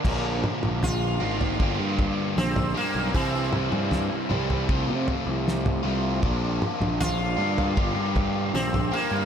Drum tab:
CC |x---------------|----------------|----------------|
SD |----o-------o---|----o-------o---|----o-------o---|
T2 |--oo---------o--|--oo--o------o--|--oo---------o--|
FT |o---o--o--o--o--|o---o--o--o--o--|o---o--o--o--o--|
BD |o-------o-o-----|o-------o-------|o-------o-o-----|